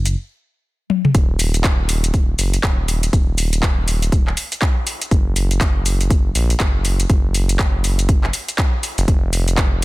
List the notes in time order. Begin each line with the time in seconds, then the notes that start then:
Already playing: F#1
0.06 closed hi-hat, shaker
0.90 high tom
1.05 mid tom
1.15 D#1, kick, closed hi-hat, shaker
1.39 open hi-hat, shaker
1.54 closed hi-hat, shaker
1.64 kick, clap, closed hi-hat, shaker
1.89 open hi-hat, shaker
2.04 closed hi-hat, shaker
2.14 kick, closed hi-hat, shaker
2.39 F#1, open hi-hat, shaker
2.54 closed hi-hat, shaker
2.63 D#1, kick, clap, closed hi-hat, shaker
2.88 open hi-hat, shaker
3.03 closed hi-hat, shaker
3.13 D#1, kick, closed hi-hat, shaker
3.38 open hi-hat, shaker
3.53 closed hi-hat, shaker
3.63 kick, clap, closed hi-hat, shaker
3.88 open hi-hat, shaker
4.02 closed hi-hat, shaker
4.12 kick, closed hi-hat, shaker
4.27 clap
4.37 open hi-hat, shaker
4.52 closed hi-hat, shaker
4.62 kick, clap, closed hi-hat, shaker
4.87 open hi-hat, shaker
5.02 closed hi-hat, shaker
5.11 F#1, kick, closed hi-hat, shaker
5.36 open hi-hat, shaker
5.51 closed hi-hat, shaker
5.61 kick, clap, closed hi-hat, shaker
5.86 open hi-hat, shaker
6.01 closed hi-hat, shaker
6.11 kick, closed hi-hat, shaker
6.35 A#1, open hi-hat, shaker
6.50 closed hi-hat, shaker
6.60 F#1, kick, clap, closed hi-hat, shaker
6.85 open hi-hat, shaker
7.00 closed hi-hat, shaker
7.10 F#1, kick, closed hi-hat, shaker
7.34 open hi-hat, shaker
7.49 closed hi-hat, shaker
7.59 kick, clap, closed hi-hat, shaker
7.84 open hi-hat, shaker
7.99 closed hi-hat, shaker
8.09 kick, closed hi-hat, shaker
8.24 clap
8.33 open hi-hat, shaker
8.48 closed hi-hat, shaker
8.58 kick, clap, closed hi-hat, shaker
8.83 open hi-hat, shaker
8.98 F#1, closed hi-hat, shaker
9.08 F1, kick, closed hi-hat, shaker
9.33 open hi-hat, shaker
9.48 closed hi-hat, shaker
9.58 kick, clap, closed hi-hat, shaker